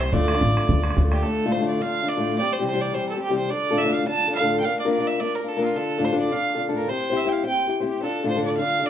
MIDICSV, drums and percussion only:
0, 0, Header, 1, 2, 480
1, 0, Start_track
1, 0, Key_signature, -1, "minor"
1, 0, Tempo, 281426
1, 227, Time_signature, 4, 2, 24, 8
1, 15178, End_track
2, 0, Start_track
2, 0, Title_t, "Bodhran"
2, 219, Note_on_c, 9, 64, 68
2, 365, Note_off_c, 9, 64, 0
2, 365, Note_on_c, 9, 64, 22
2, 480, Note_off_c, 9, 64, 0
2, 480, Note_on_c, 9, 64, 61
2, 590, Note_off_c, 9, 64, 0
2, 590, Note_on_c, 9, 64, 54
2, 700, Note_off_c, 9, 64, 0
2, 700, Note_on_c, 9, 64, 70
2, 871, Note_off_c, 9, 64, 0
2, 973, Note_on_c, 9, 64, 58
2, 1143, Note_off_c, 9, 64, 0
2, 1177, Note_on_c, 9, 64, 69
2, 1347, Note_off_c, 9, 64, 0
2, 1425, Note_on_c, 9, 64, 59
2, 1543, Note_off_c, 9, 64, 0
2, 1543, Note_on_c, 9, 64, 50
2, 1647, Note_off_c, 9, 64, 0
2, 1647, Note_on_c, 9, 64, 67
2, 1818, Note_off_c, 9, 64, 0
2, 1904, Note_on_c, 9, 64, 55
2, 2075, Note_off_c, 9, 64, 0
2, 15178, End_track
0, 0, End_of_file